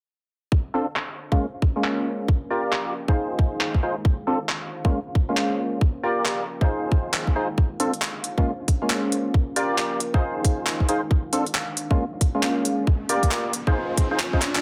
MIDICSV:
0, 0, Header, 1, 5, 480
1, 0, Start_track
1, 0, Tempo, 441176
1, 565, Time_signature, 4, 2, 24, 8
1, 15903, End_track
2, 0, Start_track
2, 0, Title_t, "Ambient pad"
2, 0, Program_c, 0, 92
2, 1286, Note_on_c, 0, 61, 73
2, 1581, Note_on_c, 0, 70, 75
2, 2486, Note_off_c, 0, 61, 0
2, 2486, Note_on_c, 0, 65, 83
2, 3206, Note_on_c, 0, 63, 74
2, 3456, Note_on_c, 0, 68, 75
2, 3685, Note_off_c, 0, 65, 0
2, 3685, Note_off_c, 0, 70, 0
2, 3761, Note_on_c, 0, 77, 81
2, 4405, Note_off_c, 0, 68, 0
2, 4406, Note_off_c, 0, 63, 0
2, 4533, Note_on_c, 0, 72, 81
2, 5125, Note_on_c, 0, 61, 88
2, 5357, Note_on_c, 0, 70, 73
2, 5606, Note_off_c, 0, 72, 0
2, 5606, Note_off_c, 0, 77, 0
2, 6325, Note_off_c, 0, 61, 0
2, 6327, Note_on_c, 0, 65, 70
2, 7044, Note_on_c, 0, 63, 82
2, 7290, Note_on_c, 0, 68, 77
2, 7526, Note_off_c, 0, 65, 0
2, 7527, Note_off_c, 0, 70, 0
2, 7599, Note_on_c, 0, 77, 92
2, 8244, Note_off_c, 0, 63, 0
2, 8245, Note_off_c, 0, 68, 0
2, 8967, Note_on_c, 0, 61, 88
2, 9290, Note_on_c, 0, 70, 76
2, 9445, Note_off_c, 0, 77, 0
2, 10164, Note_on_c, 0, 65, 85
2, 10166, Note_off_c, 0, 61, 0
2, 10887, Note_on_c, 0, 63, 75
2, 11365, Note_off_c, 0, 65, 0
2, 11366, Note_off_c, 0, 70, 0
2, 11438, Note_on_c, 0, 77, 86
2, 12086, Note_off_c, 0, 63, 0
2, 12806, Note_on_c, 0, 61, 80
2, 12972, Note_on_c, 0, 70, 84
2, 13070, Note_on_c, 0, 80, 83
2, 13284, Note_off_c, 0, 77, 0
2, 14004, Note_on_c, 0, 65, 75
2, 14005, Note_off_c, 0, 61, 0
2, 14005, Note_off_c, 0, 80, 0
2, 15204, Note_off_c, 0, 70, 0
2, 15903, Note_off_c, 0, 65, 0
2, 15903, End_track
3, 0, Start_track
3, 0, Title_t, "Synth stab"
3, 0, Program_c, 1, 62
3, 805, Note_on_c, 1, 60, 88
3, 805, Note_on_c, 1, 62, 82
3, 805, Note_on_c, 1, 65, 84
3, 805, Note_on_c, 1, 69, 97
3, 936, Note_off_c, 1, 60, 0
3, 936, Note_off_c, 1, 62, 0
3, 936, Note_off_c, 1, 65, 0
3, 936, Note_off_c, 1, 69, 0
3, 1434, Note_on_c, 1, 56, 81
3, 1434, Note_on_c, 1, 58, 74
3, 1434, Note_on_c, 1, 61, 75
3, 1435, Note_on_c, 1, 65, 89
3, 1586, Note_off_c, 1, 56, 0
3, 1586, Note_off_c, 1, 58, 0
3, 1586, Note_off_c, 1, 61, 0
3, 1586, Note_off_c, 1, 65, 0
3, 1914, Note_on_c, 1, 58, 70
3, 1914, Note_on_c, 1, 65, 82
3, 1915, Note_on_c, 1, 56, 76
3, 1915, Note_on_c, 1, 61, 71
3, 2474, Note_off_c, 1, 56, 0
3, 2474, Note_off_c, 1, 58, 0
3, 2474, Note_off_c, 1, 61, 0
3, 2474, Note_off_c, 1, 65, 0
3, 2725, Note_on_c, 1, 65, 93
3, 2725, Note_on_c, 1, 67, 88
3, 2725, Note_on_c, 1, 70, 85
3, 2725, Note_on_c, 1, 74, 104
3, 3194, Note_off_c, 1, 65, 0
3, 3194, Note_off_c, 1, 67, 0
3, 3194, Note_off_c, 1, 70, 0
3, 3194, Note_off_c, 1, 74, 0
3, 3355, Note_on_c, 1, 63, 78
3, 3355, Note_on_c, 1, 65, 71
3, 3355, Note_on_c, 1, 68, 71
3, 3355, Note_on_c, 1, 72, 88
3, 4144, Note_off_c, 1, 63, 0
3, 4144, Note_off_c, 1, 65, 0
3, 4144, Note_off_c, 1, 68, 0
3, 4144, Note_off_c, 1, 72, 0
3, 4166, Note_on_c, 1, 63, 90
3, 4166, Note_on_c, 1, 65, 85
3, 4166, Note_on_c, 1, 68, 82
3, 4166, Note_on_c, 1, 72, 103
3, 4297, Note_off_c, 1, 63, 0
3, 4297, Note_off_c, 1, 65, 0
3, 4297, Note_off_c, 1, 68, 0
3, 4297, Note_off_c, 1, 72, 0
3, 4646, Note_on_c, 1, 60, 88
3, 4646, Note_on_c, 1, 62, 82
3, 4646, Note_on_c, 1, 65, 84
3, 4646, Note_on_c, 1, 69, 100
3, 4777, Note_off_c, 1, 60, 0
3, 4777, Note_off_c, 1, 62, 0
3, 4777, Note_off_c, 1, 65, 0
3, 4777, Note_off_c, 1, 69, 0
3, 5275, Note_on_c, 1, 56, 83
3, 5275, Note_on_c, 1, 58, 74
3, 5275, Note_on_c, 1, 61, 76
3, 5275, Note_on_c, 1, 65, 91
3, 5426, Note_off_c, 1, 58, 0
3, 5426, Note_off_c, 1, 65, 0
3, 5427, Note_off_c, 1, 56, 0
3, 5427, Note_off_c, 1, 61, 0
3, 5754, Note_on_c, 1, 56, 75
3, 5754, Note_on_c, 1, 58, 67
3, 5754, Note_on_c, 1, 61, 69
3, 5754, Note_on_c, 1, 65, 84
3, 6314, Note_off_c, 1, 56, 0
3, 6314, Note_off_c, 1, 58, 0
3, 6314, Note_off_c, 1, 61, 0
3, 6314, Note_off_c, 1, 65, 0
3, 6565, Note_on_c, 1, 65, 94
3, 6565, Note_on_c, 1, 67, 85
3, 6565, Note_on_c, 1, 70, 88
3, 6565, Note_on_c, 1, 74, 104
3, 7034, Note_off_c, 1, 65, 0
3, 7034, Note_off_c, 1, 67, 0
3, 7034, Note_off_c, 1, 70, 0
3, 7034, Note_off_c, 1, 74, 0
3, 7194, Note_on_c, 1, 65, 73
3, 7194, Note_on_c, 1, 68, 71
3, 7195, Note_on_c, 1, 63, 79
3, 7195, Note_on_c, 1, 72, 88
3, 7983, Note_off_c, 1, 63, 0
3, 7983, Note_off_c, 1, 65, 0
3, 7983, Note_off_c, 1, 68, 0
3, 7984, Note_off_c, 1, 72, 0
3, 8004, Note_on_c, 1, 63, 93
3, 8004, Note_on_c, 1, 65, 85
3, 8004, Note_on_c, 1, 68, 86
3, 8004, Note_on_c, 1, 72, 103
3, 8136, Note_off_c, 1, 63, 0
3, 8136, Note_off_c, 1, 65, 0
3, 8136, Note_off_c, 1, 68, 0
3, 8136, Note_off_c, 1, 72, 0
3, 8484, Note_on_c, 1, 60, 90
3, 8484, Note_on_c, 1, 62, 82
3, 8484, Note_on_c, 1, 65, 82
3, 8484, Note_on_c, 1, 69, 98
3, 8616, Note_off_c, 1, 60, 0
3, 8616, Note_off_c, 1, 62, 0
3, 8616, Note_off_c, 1, 65, 0
3, 8616, Note_off_c, 1, 69, 0
3, 9113, Note_on_c, 1, 56, 80
3, 9113, Note_on_c, 1, 58, 73
3, 9113, Note_on_c, 1, 61, 77
3, 9113, Note_on_c, 1, 65, 91
3, 9266, Note_off_c, 1, 56, 0
3, 9266, Note_off_c, 1, 58, 0
3, 9266, Note_off_c, 1, 61, 0
3, 9266, Note_off_c, 1, 65, 0
3, 9593, Note_on_c, 1, 58, 70
3, 9593, Note_on_c, 1, 61, 70
3, 9594, Note_on_c, 1, 56, 75
3, 9594, Note_on_c, 1, 65, 83
3, 10154, Note_off_c, 1, 56, 0
3, 10154, Note_off_c, 1, 58, 0
3, 10154, Note_off_c, 1, 61, 0
3, 10154, Note_off_c, 1, 65, 0
3, 10404, Note_on_c, 1, 65, 96
3, 10404, Note_on_c, 1, 67, 88
3, 10404, Note_on_c, 1, 70, 84
3, 10404, Note_on_c, 1, 74, 104
3, 10874, Note_off_c, 1, 65, 0
3, 10874, Note_off_c, 1, 67, 0
3, 10874, Note_off_c, 1, 70, 0
3, 10874, Note_off_c, 1, 74, 0
3, 11033, Note_on_c, 1, 65, 71
3, 11034, Note_on_c, 1, 63, 79
3, 11034, Note_on_c, 1, 68, 73
3, 11034, Note_on_c, 1, 72, 87
3, 11823, Note_off_c, 1, 63, 0
3, 11823, Note_off_c, 1, 65, 0
3, 11823, Note_off_c, 1, 68, 0
3, 11823, Note_off_c, 1, 72, 0
3, 11845, Note_on_c, 1, 63, 92
3, 11845, Note_on_c, 1, 65, 87
3, 11845, Note_on_c, 1, 68, 83
3, 11845, Note_on_c, 1, 72, 102
3, 11976, Note_off_c, 1, 63, 0
3, 11976, Note_off_c, 1, 65, 0
3, 11976, Note_off_c, 1, 68, 0
3, 11977, Note_off_c, 1, 72, 0
3, 12324, Note_on_c, 1, 65, 85
3, 12324, Note_on_c, 1, 69, 101
3, 12325, Note_on_c, 1, 60, 89
3, 12325, Note_on_c, 1, 62, 83
3, 12456, Note_off_c, 1, 60, 0
3, 12456, Note_off_c, 1, 62, 0
3, 12456, Note_off_c, 1, 65, 0
3, 12456, Note_off_c, 1, 69, 0
3, 12954, Note_on_c, 1, 58, 75
3, 12954, Note_on_c, 1, 61, 75
3, 12954, Note_on_c, 1, 65, 88
3, 12955, Note_on_c, 1, 56, 83
3, 13106, Note_off_c, 1, 56, 0
3, 13106, Note_off_c, 1, 58, 0
3, 13106, Note_off_c, 1, 61, 0
3, 13106, Note_off_c, 1, 65, 0
3, 13433, Note_on_c, 1, 56, 75
3, 13433, Note_on_c, 1, 58, 69
3, 13434, Note_on_c, 1, 61, 70
3, 13434, Note_on_c, 1, 65, 85
3, 13994, Note_off_c, 1, 56, 0
3, 13994, Note_off_c, 1, 58, 0
3, 13994, Note_off_c, 1, 61, 0
3, 13994, Note_off_c, 1, 65, 0
3, 14245, Note_on_c, 1, 65, 95
3, 14245, Note_on_c, 1, 67, 86
3, 14245, Note_on_c, 1, 70, 87
3, 14245, Note_on_c, 1, 74, 105
3, 14714, Note_off_c, 1, 65, 0
3, 14714, Note_off_c, 1, 67, 0
3, 14714, Note_off_c, 1, 70, 0
3, 14714, Note_off_c, 1, 74, 0
3, 14874, Note_on_c, 1, 63, 81
3, 14874, Note_on_c, 1, 65, 73
3, 14874, Note_on_c, 1, 68, 74
3, 14874, Note_on_c, 1, 72, 89
3, 15324, Note_off_c, 1, 63, 0
3, 15324, Note_off_c, 1, 65, 0
3, 15324, Note_off_c, 1, 68, 0
3, 15324, Note_off_c, 1, 72, 0
3, 15354, Note_on_c, 1, 63, 81
3, 15354, Note_on_c, 1, 65, 70
3, 15354, Note_on_c, 1, 68, 73
3, 15354, Note_on_c, 1, 72, 89
3, 15434, Note_off_c, 1, 63, 0
3, 15434, Note_off_c, 1, 65, 0
3, 15434, Note_off_c, 1, 68, 0
3, 15434, Note_off_c, 1, 72, 0
3, 15594, Note_on_c, 1, 63, 94
3, 15594, Note_on_c, 1, 65, 87
3, 15594, Note_on_c, 1, 68, 87
3, 15594, Note_on_c, 1, 72, 107
3, 15674, Note_off_c, 1, 63, 0
3, 15674, Note_off_c, 1, 65, 0
3, 15674, Note_off_c, 1, 68, 0
3, 15674, Note_off_c, 1, 72, 0
3, 15903, End_track
4, 0, Start_track
4, 0, Title_t, "Riser"
4, 0, Program_c, 2, 103
4, 12085, Note_on_c, 2, 60, 75
4, 15903, Note_off_c, 2, 60, 0
4, 15903, End_track
5, 0, Start_track
5, 0, Title_t, "Drums"
5, 564, Note_on_c, 9, 36, 113
5, 673, Note_off_c, 9, 36, 0
5, 1045, Note_on_c, 9, 39, 110
5, 1154, Note_off_c, 9, 39, 0
5, 1434, Note_on_c, 9, 36, 96
5, 1542, Note_off_c, 9, 36, 0
5, 1765, Note_on_c, 9, 36, 101
5, 1874, Note_off_c, 9, 36, 0
5, 2005, Note_on_c, 9, 39, 114
5, 2114, Note_off_c, 9, 39, 0
5, 2485, Note_on_c, 9, 36, 118
5, 2594, Note_off_c, 9, 36, 0
5, 2965, Note_on_c, 9, 39, 120
5, 3074, Note_off_c, 9, 39, 0
5, 3355, Note_on_c, 9, 36, 101
5, 3463, Note_off_c, 9, 36, 0
5, 3685, Note_on_c, 9, 36, 99
5, 3794, Note_off_c, 9, 36, 0
5, 3925, Note_on_c, 9, 39, 117
5, 4034, Note_off_c, 9, 39, 0
5, 4074, Note_on_c, 9, 36, 61
5, 4183, Note_off_c, 9, 36, 0
5, 4405, Note_on_c, 9, 36, 120
5, 4514, Note_off_c, 9, 36, 0
5, 4885, Note_on_c, 9, 39, 122
5, 4994, Note_off_c, 9, 39, 0
5, 5274, Note_on_c, 9, 36, 105
5, 5383, Note_off_c, 9, 36, 0
5, 5605, Note_on_c, 9, 36, 105
5, 5714, Note_off_c, 9, 36, 0
5, 5845, Note_on_c, 9, 39, 117
5, 5954, Note_off_c, 9, 39, 0
5, 6325, Note_on_c, 9, 36, 119
5, 6433, Note_off_c, 9, 36, 0
5, 6805, Note_on_c, 9, 39, 116
5, 6914, Note_off_c, 9, 39, 0
5, 7193, Note_on_c, 9, 36, 101
5, 7302, Note_off_c, 9, 36, 0
5, 7524, Note_on_c, 9, 36, 102
5, 7633, Note_off_c, 9, 36, 0
5, 7765, Note_on_c, 9, 39, 121
5, 7873, Note_off_c, 9, 39, 0
5, 7913, Note_on_c, 9, 36, 63
5, 8022, Note_off_c, 9, 36, 0
5, 8244, Note_on_c, 9, 36, 117
5, 8353, Note_off_c, 9, 36, 0
5, 8485, Note_on_c, 9, 42, 96
5, 8593, Note_off_c, 9, 42, 0
5, 8633, Note_on_c, 9, 42, 57
5, 8724, Note_on_c, 9, 39, 115
5, 8742, Note_off_c, 9, 42, 0
5, 8833, Note_off_c, 9, 39, 0
5, 8964, Note_on_c, 9, 42, 98
5, 9073, Note_off_c, 9, 42, 0
5, 9114, Note_on_c, 9, 36, 99
5, 9222, Note_off_c, 9, 36, 0
5, 9444, Note_on_c, 9, 36, 97
5, 9444, Note_on_c, 9, 42, 101
5, 9553, Note_off_c, 9, 36, 0
5, 9553, Note_off_c, 9, 42, 0
5, 9684, Note_on_c, 9, 39, 115
5, 9792, Note_off_c, 9, 39, 0
5, 9924, Note_on_c, 9, 42, 101
5, 10033, Note_off_c, 9, 42, 0
5, 10164, Note_on_c, 9, 36, 112
5, 10273, Note_off_c, 9, 36, 0
5, 10404, Note_on_c, 9, 42, 99
5, 10513, Note_off_c, 9, 42, 0
5, 10644, Note_on_c, 9, 39, 111
5, 10753, Note_off_c, 9, 39, 0
5, 10884, Note_on_c, 9, 42, 103
5, 10993, Note_off_c, 9, 42, 0
5, 11033, Note_on_c, 9, 36, 94
5, 11142, Note_off_c, 9, 36, 0
5, 11364, Note_on_c, 9, 36, 93
5, 11365, Note_on_c, 9, 42, 105
5, 11473, Note_off_c, 9, 36, 0
5, 11474, Note_off_c, 9, 42, 0
5, 11604, Note_on_c, 9, 39, 112
5, 11713, Note_off_c, 9, 39, 0
5, 11753, Note_on_c, 9, 36, 57
5, 11844, Note_on_c, 9, 42, 104
5, 11862, Note_off_c, 9, 36, 0
5, 11953, Note_off_c, 9, 42, 0
5, 12084, Note_on_c, 9, 36, 111
5, 12193, Note_off_c, 9, 36, 0
5, 12324, Note_on_c, 9, 42, 104
5, 12433, Note_off_c, 9, 42, 0
5, 12474, Note_on_c, 9, 42, 61
5, 12564, Note_on_c, 9, 39, 112
5, 12582, Note_off_c, 9, 42, 0
5, 12673, Note_off_c, 9, 39, 0
5, 12804, Note_on_c, 9, 42, 104
5, 12913, Note_off_c, 9, 42, 0
5, 12954, Note_on_c, 9, 36, 94
5, 13062, Note_off_c, 9, 36, 0
5, 13284, Note_on_c, 9, 42, 108
5, 13285, Note_on_c, 9, 36, 95
5, 13393, Note_off_c, 9, 36, 0
5, 13393, Note_off_c, 9, 42, 0
5, 13525, Note_on_c, 9, 39, 110
5, 13633, Note_off_c, 9, 39, 0
5, 13764, Note_on_c, 9, 42, 111
5, 13873, Note_off_c, 9, 42, 0
5, 14005, Note_on_c, 9, 36, 115
5, 14113, Note_off_c, 9, 36, 0
5, 14244, Note_on_c, 9, 42, 104
5, 14353, Note_off_c, 9, 42, 0
5, 14394, Note_on_c, 9, 36, 57
5, 14394, Note_on_c, 9, 42, 65
5, 14484, Note_on_c, 9, 39, 112
5, 14502, Note_off_c, 9, 36, 0
5, 14503, Note_off_c, 9, 42, 0
5, 14593, Note_off_c, 9, 39, 0
5, 14725, Note_on_c, 9, 42, 108
5, 14834, Note_off_c, 9, 42, 0
5, 14874, Note_on_c, 9, 36, 100
5, 14982, Note_off_c, 9, 36, 0
5, 15204, Note_on_c, 9, 36, 98
5, 15205, Note_on_c, 9, 42, 108
5, 15313, Note_off_c, 9, 36, 0
5, 15313, Note_off_c, 9, 42, 0
5, 15444, Note_on_c, 9, 39, 113
5, 15553, Note_off_c, 9, 39, 0
5, 15593, Note_on_c, 9, 36, 57
5, 15685, Note_on_c, 9, 39, 84
5, 15685, Note_on_c, 9, 42, 109
5, 15702, Note_off_c, 9, 36, 0
5, 15794, Note_off_c, 9, 39, 0
5, 15794, Note_off_c, 9, 42, 0
5, 15834, Note_on_c, 9, 39, 96
5, 15903, Note_off_c, 9, 39, 0
5, 15903, End_track
0, 0, End_of_file